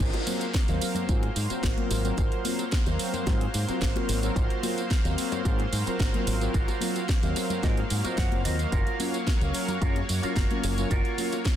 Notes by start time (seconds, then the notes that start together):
0.00 F#3 A#3 F4 F#4 A#4 C5 F5, kick, tambourine
0.13 closed hi-hat, high bongo
0.26 F#3 C4 F4 A#4, open hi-hat, tambourine, high conga
0.41 closed hi-hat, tambourine
0.54 kick, snare, closed hi-hat, tambourine, high bongo
0.68 D#2 F#3 C4 A#4 F5, closed hi-hat, tambourine
0.81 open hi-hat, tambourine, high bongo
0.95 muted clean electric guitar stroke, closed hi-hat, tambourine, high conga, low conga
1.08 G#2 F#3 C4 F4 F#4 G#4 A#4 C5, kick, closed hi-hat, tambourine
1.23 closed hi-hat, high bongo
1.35 G#2, muted clean electric guitar stroke, open hi-hat, tambourine
1.49 F#3 C4 F4 F#4 A#4 C5, muted fingered electric bass stroke, closed hi-hat, tambourine, high bongo
1.63 G#1, kick, snare, closed hi-hat, tambourine
1.77 F#3 C4 F4 A#4, closed hi-hat, high conga
1.91 G#1, open hi-hat, tambourine, high bongo
2.04 F#3 C4 F4 A#4, closed hi-hat, tambourine
2.17 G#1 F4 F#4 A#4 C5, kick, closed hi-hat, tambourine, high bongo
2.32 closed hi-hat
2.45 F#3 C4 F4 A#4, open hi-hat, tambourine, high conga
2.59 closed hi-hat, tambourine, high bongo
2.72 kick, snare, closed hi-hat, tambourine
2.86 D#2 F#3 C4 A#4 F5, closed hi-hat, tambourine, high bongo
2.99 open hi-hat, tambourine
3.13 muted clean electric guitar stroke, closed hi-hat, tambourine, high conga, low conga
3.26 G#2 F#3 C4 F4 F#4 G#4 A#4 C5, kick, snare, closed hi-hat, tambourine, high bongo
3.41 closed hi-hat
3.54 G#2, muted clean electric guitar stroke, open hi-hat, tambourine, high bongo
3.67 F#3 C4 F4 F#4 A#4 C5, muted fingered electric bass stroke, closed hi-hat, tambourine
3.81 G#1, kick, snare, closed hi-hat, tambourine
3.95 F#3 C4 F4 A#4, closed hi-hat, high bongo, high conga
4.09 G#1, open hi-hat, tambourine
4.22 F#3 C4 F4 A#4, closed hi-hat, tambourine, high bongo
4.35 G#1 F4 F#4 A#4 C5, kick, closed hi-hat, tambourine
4.50 closed hi-hat
4.63 F#3 C4 F4 A#4, open hi-hat, tambourine, high bongo, high conga
4.78 closed hi-hat, tambourine
4.90 kick, snare, closed hi-hat, tambourine, high bongo
5.04 D#2 F#3 C4 A#4 F5, closed hi-hat, tambourine
5.18 open hi-hat, tambourine
5.32 muted clean electric guitar stroke, closed hi-hat, tambourine, high bongo, high conga, low conga
5.44 G#2 F#3 C4 F4 F#4 G#4 A#4 C5, kick, closed hi-hat, tambourine
5.59 closed hi-hat, high bongo
5.72 G#2, muted clean electric guitar stroke, open hi-hat, tambourine
5.86 F#3 C4 F4 F#4 A#4 C5, muted fingered electric bass stroke, closed hi-hat, tambourine
6.00 G#1, kick, snare, closed hi-hat, tambourine, high bongo
6.13 F#3 C4 F4 A#4, closed hi-hat, high conga
6.27 G#1, open hi-hat, tambourine, high bongo
6.40 F#3 C4 F4 A#4, closed hi-hat, tambourine
6.53 G#1 F4 F#4 A#4 C5, kick, closed hi-hat, tambourine
6.68 closed hi-hat, tambourine, high bongo
6.81 F#3 C4 F4 A#4, open hi-hat, tambourine, high conga
6.95 closed hi-hat, tambourine, high bongo
7.09 kick, snare, closed hi-hat, tambourine
7.22 D#2 F#3 C4 A#4 F5, closed hi-hat, tambourine
7.36 open hi-hat, tambourine, high bongo
7.49 muted clean electric guitar stroke, closed hi-hat, tambourine, high conga, low conga
7.62 G#2 F#3 C4 F4 F#4 G#4 A#4 D#5, kick, snare, closed hi-hat, tambourine, high bongo
7.77 closed hi-hat
7.90 G#2, muted clean electric guitar stroke, open hi-hat, tambourine
8.04 F#3 C4 F4 F#4 A#4 C5 D#5, muted fingered electric bass stroke, closed hi-hat, tambourine, high bongo
8.18 F#2 F#5, kick, snare, closed hi-hat, tambourine
8.32 F#1 F#3 C4 F4 A#4, closed hi-hat, high bongo, high conga
8.45 D#2 F#3 C4 F4 A#4 D#5, open hi-hat, tambourine
8.59 closed hi-hat, tambourine
8.71 F#1 F4 F#4 A#4 C#5, kick, closed hi-hat, tambourine
8.87 closed hi-hat, high bongo
8.99 F#3 C#4 F4 A#4, open hi-hat, tambourine, high conga
9.14 closed hi-hat, tambourine
9.27 kick, snare, closed hi-hat, tambourine, high bongo
9.41 C#2 F#3 C#4 A#4 F5, closed hi-hat, tambourine
9.54 open hi-hat, tambourine, high bongo
9.67 muted clean electric guitar stroke, closed hi-hat, tambourine, high conga, low conga
9.81 F#2 F#3 C#4 F4 F#4 G#4 A#4, kick, closed hi-hat, tambourine
9.96 closed hi-hat, high bongo
10.08 F#2, muted clean electric guitar stroke, open hi-hat, tambourine
10.22 F#3 C#4 F4 F#4 A#4, muted fingered electric bass stroke, closed hi-hat, tambourine, high bongo
10.36 F#1, kick, snare, closed hi-hat, tambourine
10.50 F#3 C#4 F4 A#4, closed hi-hat, high conga
10.64 F#1, open hi-hat, tambourine, high bongo
10.77 F#3 C#4 F4 A#4, closed hi-hat, tambourine
10.90 F#1 F4 F#4 A#4, kick, closed hi-hat, tambourine, high bongo
11.05 closed hi-hat
11.18 F#3 C#4 F4 A#4, open hi-hat, tambourine, high conga
11.32 closed hi-hat, tambourine, high bongo
11.45 kick, snare, closed hi-hat, tambourine